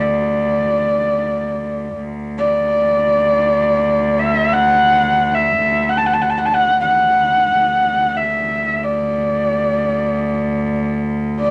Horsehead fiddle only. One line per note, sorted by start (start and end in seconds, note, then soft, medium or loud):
0.00 1.98 D5 medium
2.38 4.21 D5 medium
4.19 4.54 E5 medium
4.53 5.36 F#5 medium
5.35 5.91 E5 medium
5.89 5.99 F#5 medium
5.97 6.08 A5 medium
6.06 6.15 F#5 medium
6.13 6.23 A5 medium
6.22 6.31 F#5 medium
6.30 6.40 A5 medium
6.38 6.47 F#5 medium
6.46 6.55 A5 medium
6.54 6.80 F#5 medium
6.81 8.18 F#5 medium
8.16 8.84 E5 medium
8.83 10.93 D5 medium
11.40 11.51 D5 medium